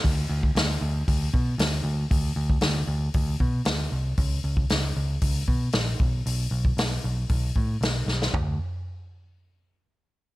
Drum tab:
HH |o---o---o---o---|o---o---o---o---|o---o---o---o---|o---o---o---o---|
SD |----o-------o---|----o-------o---|----o-------o---|----o-------o-oo|
FT |----------------|----------------|----------------|----------------|
BD |o--o----o-o-----|o--o----o-o-----|o--o----o-o---o-|---o----o-o-----|

HH |----------------|
SD |----------------|
FT |o---------------|
BD |o---------------|